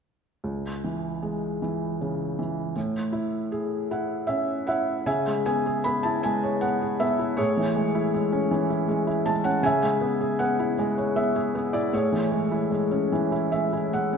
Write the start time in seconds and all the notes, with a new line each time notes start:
0.44 C#2
0.84 E3
1.23 G#3
1.62 E3
2.01 C#3
2.39 E3
2.76 A2
3.12 E4
3.52 G#4
3.91 E4 F#5
4.27 C#4 E5
4.67 E4 E5 F#5
5.06 C#3 E5 G#5
5.27 G#3
5.46 B3 G#5
5.66 G#4
5.84 B3 B5
6.03 E4 A5
6.23 G#3 G#5
6.43 C#5
6.61 B3 F#5
6.82 G#4
7.00 B3 E5
7.19 E4
7.37 A2 G#4 C#5
7.57 E3
7.76 G#3
7.95 E4
8.14 G#3
8.32 C#4
8.51 E3
8.70 E4
8.88 G#3
9.07 E4
9.26 G#3 A5
9.44 C#4 F#5
9.63 C#3 E5 G#5
9.83 G#3
10.01 B3
10.21 G#4
10.39 B3 F#5
10.59 E4
10.79 G#3
10.98 C#5
11.16 B3 E5
11.36 G#4
11.55 B3
11.73 E4 D5
11.93 A2 G#4 C#5
12.12 E3
12.32 G#3
12.51 E4
12.72 G#3
12.91 C#4
13.12 E3
13.32 E4
13.52 G#3 E5
13.73 E4
13.93 G#3 F#5
14.13 C#4